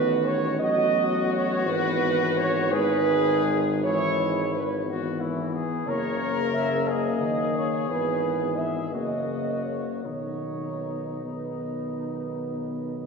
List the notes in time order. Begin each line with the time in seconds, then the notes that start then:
Already playing: A1 D#3 B3 F#4 B4
0.25 C#5
0.60 F#3 B3 F#4 D#5
1.33 C#5
1.66 G#1 E3 B3 B4
2.37 C#5
2.71 D#3 G#3 G#4 B4
3.45 G#4
3.83 E3 G#3 E4 C#5
4.55 B4
4.87 E3 B3 F#4
5.20 E4
5.54 G#4
5.86 F#1 C#3 A#3 A#4 C#5
6.53 E5
6.87 G#4 D#5
7.21 D#3
7.56 C#5
7.86 G#1 E3 B3 B4
8.57 E5
8.92 F#1 C#3 A#3 F#4 D#5
9.65 C#5
10.04 B1 D#3 B3 D#4 C#5
11.24 D#3 B3 B4